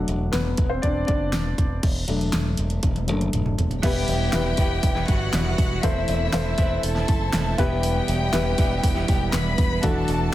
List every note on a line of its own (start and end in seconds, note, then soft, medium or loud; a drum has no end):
0.00 0.16 F#3 soft
0.00 0.17 A3 soft
0.00 0.17 D4 medium
0.08 0.29 E1 loud
0.08 closed hi-hat medium
0.32 0.54 E1 medium
0.32 0.69 B3 medium
0.32 0.71 B4 medium
0.32 snare loud
0.32 closed hi-hat medium
0.57 0.79 E1 medium
0.57 kick medium
0.57 closed hi-hat medium
0.69 0.83 C4 medium
0.69 0.83 C5 medium
0.82 1.04 E1 medium
0.82 1.07 D4 medium
0.82 1.06 D5 medium
0.82 kick medium
0.82 closed hi-hat medium
1.07 1.33 F#1 medium
1.07 1.55 D4 medium
1.07 1.54 D5 loud
1.07 kick medium
1.07 closed hi-hat medium
1.33 1.54 E1 medium
1.33 snare medium
1.33 closed hi-hat medium
1.58 1.79 E1 medium
1.58 kick medium
1.58 closed hi-hat medium
1.83 2.04 E1 medium
1.83 kick loud
1.83 closed hi-hat medium
1.83 crash medium
1.96 closed hi-hat soft
2.08 2.29 E1 medium
2.08 2.41 F#3 medium
2.08 2.41 A3 soft
2.08 2.42 D4 medium
2.08 closed hi-hat medium
2.21 closed hi-hat soft
2.33 2.54 E1 medium
2.33 snare loud
2.33 closed hi-hat medium
2.57 2.79 E1 medium
2.57 closed hi-hat medium
2.70 closed hi-hat soft
2.83 3.09 E1 medium
2.83 kick medium
2.83 closed hi-hat medium
2.83 high tom medium
2.96 closed hi-hat soft
2.96 high tom soft
3.07 3.29 F#1 medium
3.07 3.30 F#3 soft
3.07 3.31 A3 soft
3.07 3.31 D4 soft
3.07 closed hi-hat medium
3.07 mid tom medium
3.21 closed hi-hat soft
3.21 mid tom medium
3.33 3.54 E1 medium
3.33 closed hi-hat medium
3.33 mid tom medium
3.46 mid tom medium
3.58 3.79 E1 medium
3.58 closed hi-hat medium
3.58 floor tom medium
3.71 closed hi-hat soft
3.71 floor tom medium
3.83 4.04 E1 loud
3.83 4.55 B2 medium
3.83 4.32 E3 medium
3.83 4.32 G3 medium
3.83 4.33 B3 medium
3.83 4.28 E4 medium
3.83 4.35 E4 medium
3.83 5.06 G4 medium
3.83 4.28 G4 medium
3.83 4.29 B4 medium
3.83 5.06 G5 medium
3.83 kick loud
3.83 open hi-hat medium
3.83 crash loud
4.08 4.29 E1 loud
4.08 open hi-hat medium
4.33 4.54 E1 loud
4.33 4.57 E3 medium
4.33 4.58 G3 medium
4.33 4.59 B3 medium
4.33 5.22 E4 medium
4.33 4.59 E4 medium
4.33 5.23 G4 medium
4.33 5.23 B4 medium
4.33 snare loud
4.33 clap loud
4.33 open hi-hat medium
4.57 4.79 E1 medium
4.57 4.96 E3 medium
4.57 4.96 G3 medium
4.57 4.95 B3 medium
4.57 4.94 E4 medium
4.57 kick medium
4.57 open hi-hat medium
4.83 5.04 E1 medium
4.83 kick medium
4.83 open hi-hat medium
4.95 5.31 E3 soft
4.95 5.33 G3 medium
4.95 5.34 B3 medium
4.95 5.33 E4 medium
4.95 snare soft
5.08 5.29 G1 medium
5.08 5.82 F#4 medium
5.08 5.82 F#5 medium
5.08 kick medium
5.08 open hi-hat medium
5.33 5.54 E1 loud
5.33 5.82 E3 medium
5.33 5.83 G3 medium
5.33 5.84 B3 medium
5.33 5.85 E4 medium
5.33 snare loud
5.33 clap loud
5.33 open hi-hat medium
5.58 5.79 E1 loud
5.58 kick medium
5.58 open hi-hat medium
5.83 6.04 E1 loud
5.83 6.32 E3 medium
5.83 6.54 E3 medium
5.83 6.32 A3 medium
5.83 6.33 C4 medium
5.83 6.28 E4 medium
5.83 6.82 E4 medium
5.83 6.35 E4 medium
5.83 6.28 A4 medium
5.83 6.28 C5 medium
5.83 6.82 E5 medium
5.83 kick loud
5.83 open hi-hat loud
6.08 6.29 E1 loud
6.08 open hi-hat medium
6.32 6.54 E1 medium
6.32 6.56 E3 medium
6.32 6.57 A3 medium
6.32 6.58 C4 medium
6.32 7.22 E4 medium
6.32 6.59 E4 medium
6.32 7.22 A4 medium
6.32 7.23 C5 medium
6.32 snare loud
6.32 clap medium
6.32 open hi-hat medium
6.57 6.79 E1 loud
6.57 6.95 E3 medium
6.57 6.96 A3 medium
6.57 6.95 C4 medium
6.57 6.94 E4 medium
6.57 kick medium
6.57 open hi-hat medium
6.83 7.04 E1 medium
6.83 7.57 A4 medium
6.83 7.57 A5 medium
6.83 open hi-hat loud
6.95 7.32 A3 soft
6.95 7.33 C4 medium
6.95 7.33 E4 medium
6.95 snare soft
7.08 7.29 F#1 medium
7.08 kick medium
7.08 open hi-hat medium
7.33 7.54 E1 loud
7.33 7.58 E3 medium
7.33 7.58 A3 medium
7.33 7.59 C4 medium
7.33 7.59 E4 medium
7.33 snare loud
7.33 clap medium
7.33 open hi-hat medium
7.58 7.99 E1 loud
7.58 8.33 E2 medium
7.58 8.29 B2 medium
7.58 8.33 B2 medium
7.58 8.32 E3 medium
7.58 8.33 G3 medium
7.58 8.34 B3 medium
7.58 8.25 E4 medium
7.58 8.34 E4 medium
7.58 8.25 G4 medium
7.58 9.30 G4 medium
7.58 8.25 B4 loud
7.58 9.30 G5 medium
7.58 kick loud
7.58 open hi-hat medium
7.83 open hi-hat medium
8.08 8.29 E1 loud
8.08 open hi-hat medium
8.32 8.54 E1 loud
8.32 8.57 E3 medium
8.32 8.58 G3 medium
8.32 8.59 B3 medium
8.32 9.22 E4 medium
8.32 8.59 E4 medium
8.32 9.22 G4 medium
8.32 9.23 B4 medium
8.32 snare loud
8.32 clap medium
8.32 open hi-hat medium
8.58 8.79 E1 loud
8.58 8.96 E3 medium
8.58 8.96 G3 medium
8.58 8.95 B3 medium
8.58 8.94 E4 medium
8.58 kick medium
8.58 open hi-hat medium
8.83 9.04 E1 loud
8.83 kick medium
8.83 open hi-hat medium
8.95 9.31 E3 soft
8.95 9.32 G3 medium
8.95 9.33 B3 medium
8.95 9.33 E4 medium
8.95 snare soft
9.08 9.29 E1 medium
9.08 kick medium
9.08 open hi-hat medium
9.32 9.54 E1 loud
9.32 9.81 E3 medium
9.32 9.83 G3 medium
9.32 9.84 B3 medium
9.32 9.84 E4 medium
9.32 9.83 B4 medium
9.32 9.82 B5 medium
9.32 snare loud
9.32 clap loud
9.32 open hi-hat medium
9.58 9.79 E1 loud
9.58 kick medium
9.58 open hi-hat medium
9.82 10.04 E1 loud
9.82 10.32 E3 medium
9.82 10.34 E3 medium
9.82 10.32 A3 medium
9.82 10.27 D4 medium
9.82 10.33 D4 medium
9.82 10.28 F#4 medium
9.82 10.34 F#4 medium
9.82 10.28 A4 medium
9.82 10.34 A4 medium
9.82 10.34 A5 medium
9.82 kick loud
9.82 open hi-hat medium
10.08 10.29 E1 loud
10.08 open hi-hat medium